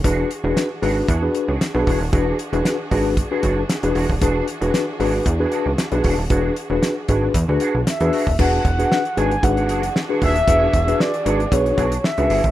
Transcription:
<<
  \new Staff \with { instrumentName = "Soft synth lead" } { \time 4/4 \key e \mixolydian \tempo 4 = 115 r1 | r1 | r1 | r2. e''4 |
fis''4. gis''8 fis''4 r8 e''8~ | e''4 d''4 cis''4 e''4 | }
  \new Staff \with { instrumentName = "Tine electric piano" } { \time 4/4 \key e \mixolydian <d' fis' gis' b'>8 r16 <d' fis' gis' b'>8 r16 <d' fis' gis' b'>8 r16 <d' fis' gis' b'>8 r8 <d' fis' gis' b'>8 r16 | <d' fis' gis' b'>8 r16 <d' fis' gis' b'>8 r16 <d' fis' gis' b'>8 r16 <d' fis' gis' b'>8 r8 <d' fis' gis' b'>8 r16 | <d' fis' gis' b'>8 r16 <d' fis' gis' b'>8 r16 <d' fis' gis' b'>8 r16 <d' fis' gis' b'>8 r8 <d' fis' gis' b'>8 r16 | <d' fis' gis' b'>8 r16 <d' fis' gis' b'>8 r16 <d' fis' gis' b'>8 r16 <d' fis' gis' b'>8 r8 <d' fis' gis' b'>8 r16 |
<d' fis' gis' b'>8 r16 <d' fis' gis' b'>8 r16 <d' fis' gis' b'>16 r16 <d' fis' gis' b'>8. r8 <d' fis' gis' b'>8 r16 | <d' fis' gis' b'>8 r16 <d' fis' gis' b'>8 r16 <d' fis' gis' b'>16 r16 <d' fis' gis' b'>8. r8 <d' fis' gis' b'>8 r16 | }
  \new Staff \with { instrumentName = "Clean electric guitar" } { \time 4/4 \key e \mixolydian <d' fis' gis'>8 r16 <d' fis' gis'>16 r8 <d' fis' gis'>16 r16 <d' fis' gis'>16 r8 <d' fis' gis'>16 r16 <d' fis' gis'>16 <d' fis' gis'>16 r16 | <d' fis' gis'>8 r16 <d' fis' gis'>16 r8 <d' fis' gis'>16 r8 <d' fis' gis'>16 <d' fis' gis'>16 r8 <d' fis' gis'>16 <d' fis' gis'>16 r16 | <d' fis' gis'>8 r16 <d' fis' gis'>16 r8 <d' fis' gis'>16 r8 <d' fis' gis'>16 <d' fis' gis'>16 r8 <d' fis' gis'>16 <d' fis' gis'>16 r16 | <d' fis' gis'>8 r16 <d' fis' gis'>16 r8 <d' fis' gis'>16 r8 <d' fis' gis'>16 <d' fis' gis'>16 r8 <d' fis' gis'>16 <d' fis' gis'>16 r16 |
<d' fis' gis'>8 r16 <d' fis' gis'>16 r8 <d' fis' gis'>16 r8 <d' fis' gis'>16 <d' fis' gis'>16 r8 <d' fis' gis'>16 <d' fis' gis'>16 r16 | <d' fis' gis'>8 r16 <d' fis' gis'>16 r8 <d' fis' gis'>16 r8. <d' fis' gis'>16 r8 <d' fis' gis'>16 <d' fis' gis'>16 r16 | }
  \new Staff \with { instrumentName = "String section" } { \time 4/4 \key e \mixolydian <e d' fis' gis'>1~ | <e d' fis' gis'>1~ | <e d' fis' gis'>1~ | <e d' fis' gis'>1 |
<e d' fis' gis'>1~ | <e d' fis' gis'>1 | }
  \new Staff \with { instrumentName = "Analog synth bass" } { \clef bass \time 4/4 \key e \mixolydian e,,8 r16 e,,16 r8 gis,,8 e,8 r16 cis,16 r16 b,,16 e,,16 dis,,16 | e,,8 r16 e,,16 r8 gis,,8. r16 fis,,8 r16 e,,16 e,,16 dis,,16 | e,,8 r16 e,,16 r8 gis,,8 e,8 r16 cis,16 r16 b,,16 e,,16 dis,,16 | e,,8 r16 e,,16 r8 gis,,8 e,16 d,16 r16 b,,16 r16 e,16 r16 dis,,16 |
e,,8 e,,8 r8 gis,,8 gis,,8 fis,,8 r8 dis,,8 | e,,8 e,,8 r8 gis,,8 b,,8 b,,8 r16 cis,16 g,,16 gis,,16 | }
  \new DrumStaff \with { instrumentName = "Drums" } \drummode { \time 4/4 <hh bd>8 hh8 <hh sn>8 hho8 <hh bd>8 hh8 <hh sn>8 <hho bd>8 | <hh bd>8 hh16 hh16 <hh sn>8 <hho bd>8 <hh bd>8 <hh bd>8 <hh sn>16 hh16 hho16 bd16 | <hh bd>8 hh16 hh16 <hh sn>8 hho8 <hh bd>8 hh8 <hh sn>16 hh16 <hho bd>8 | <hh bd>8 hh8 <hh sn>8 <hh bd>8 <hh bd>8 hh8 <hh sn>16 hh16 hho16 bd16 |
<cymc bd>8 <hh bd>16 hh16 sn16 hh16 hh16 hh16 <hh bd>16 hh16 hh16 hh16 sn8 <hho bd>16 hh16 | <hh bd>8 <hh bd>16 hh16 sn16 hh16 hh16 hh16 <hh bd>16 hh16 <hh bd>16 hh16 sn16 hh16 hho16 <hh bd>16 | }
>>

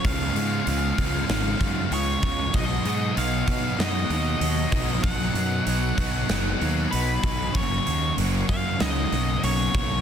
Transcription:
<<
  \new Staff \with { instrumentName = "Lead electric guitar" } { \time 4/4 \key b \lydian \tempo 4 = 96 eis''2. cis''4 | dis''4 eis''4 dis''2 | fis''2. b'4 | cis''4 r8 eis''8 dis''4 cis''4 | }
  \new Staff \with { instrumentName = "Overdriven electric guitar" } { \time 4/4 \key b \lydian <cis gis b eis'>8 <gis b eis'>8 <cis gis b eis'>8 <gis b eis'>8 <cis gis b eis'>8 <gis b eis'>8 <cis gis b eis'>8 <gis b eis'>8 | <b, fis b dis' fis'>8 <b dis' fis'>8 <fis b dis' fis'>8 <b dis' fis'>8 <b, fis b dis' fis'>8 <b dis' fis'>8 <fis b dis' fis'>8 <b dis' fis'>8 | <b, fis b dis' fis'>8 <b dis' fis'>8 <fis b dis' fis'>8 <b dis' fis'>8 <b, fis b dis' fis'>8 <b dis' fis'>8 <fis b dis' fis'>8 <b dis' fis'>8 | <fis, cis fis ais cis' fis'>8 <fis ais cis' fis'>8 <fis ais cis' fis'>8 <fis ais cis' fis'>8 <fis, cis fis ais cis' fis'>8 <fis ais cis' fis'>8 <fis ais cis' fis'>8 <fis ais cis' fis'>8 | }
  \new Staff \with { instrumentName = "Distorted electric guitar" } { \clef bass \time 4/4 \key b \lydian <cis gis cis'>8 <gis cis'>8 <cis gis cis'>8 <gis cis'>4. <cis gis cis'>8 <gis cis'>8 | <b, fis b>8 <fis b>8 <b, fis b>8 <fis b>4. <b, fis b>8 <fis b>8 | <b, fis b>8 <fis b>8 <b, fis b>8 <fis b>4. <b, fis b>8 <fis b>8 | <fis, cis fis>8 <cis fis>8 <fis, cis fis>8 <cis fis>4. <fis, cis fis>8 <cis fis>8 | }
  \new Staff \with { instrumentName = "Fingered electric bass" } { \clef bass \time 4/4 \key b \lydian cis,8 gis,8 cis,8 cis,8 gis,,8 fis,8 cis,8 cis,8 | b,,8 gis,8 b,,8 b,8 fis,8 dis,8 dis,8 b,,8 | b,,8 fis,8 b,,8 b,,8 fis,,8 dis,8 b,,8 b,,8 | fis,,8 dis,8 fis,,8 fis,8 cis,8 b,,8 b,,8 b,,8 | }
  \new DrumStaff \with { instrumentName = "Drums" } \drummode { \time 4/4 <hho bd>8 hho8 hho8 <hho bd>8 <hho sn>8 <hho bd>8 hho8 <hho bd>8 | <hho bd>8 hho8 hho8 <hho bd>8 <hho sn>8 hho8 hho8 <hho bd sn>8 | <hho bd>8 hho8 hho8 <hho bd>8 <hho sn>8 hho8 hho8 <hho bd>8 | <hho bd>8 hho8 hho8 <hho bd>8 <hho sn>8 hho8 hho8 bd8 | }
>>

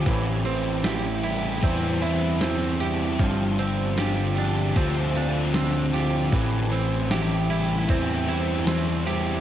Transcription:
<<
  \new Staff \with { instrumentName = "Overdriven electric guitar" } { \time 4/4 \key a \minor \tempo 4 = 77 a,8 c'8 e'8 g'8 c'8 e'8 c'8 e'8 | g,8 c'8 f'8 g'8 c'8 f'8 c'8 f'8 | a,8 c'8 e'8 g'8 c'8 e'8 c'8 e'8 | }
  \new Staff \with { instrumentName = "Clean electric guitar" } { \time 4/4 \key a \minor e8 c'8 g'8 e'8 c'8 e'8 c'8 g'8 | f8 c'8 g'8 d'8 c'8 d'8 c'8 g'8 | e8 c'8 g'8 e'8 c'8 e'8 c'8 g'8 | }
  \new Staff \with { instrumentName = "Distorted electric guitar" } { \clef bass \time 4/4 \key a \minor a,8 e8 e8 g8 e'8 c'8 e8 g8 | g,8 d8 d8 f8 f'8 c'8 d8 f8 | a,8 e8 e8 g8 e'8 c'8 e8 g8 | }
  \new Staff \with { instrumentName = "Fingered electric bass" } { \clef bass \time 4/4 \key a \minor a,,2 e,2 | g,,2 d,2 | a,,2 e,2 | }
  \new DrumStaff \with { instrumentName = "Drums" } \drummode { \time 4/4 <hh bd>8 hh8 <hh sn>8 hh8 <hh bd>8 hh8 <hh sn>8 hh8 | <hh bd>8 hh8 <hh sn>8 hh8 <hh bd>8 hh8 <hh sn>8 hh8 | <hh bd>8 hh8 <hh sn>8 hh8 <hh bd>8 hh8 <hh sn>8 hh8 | }
>>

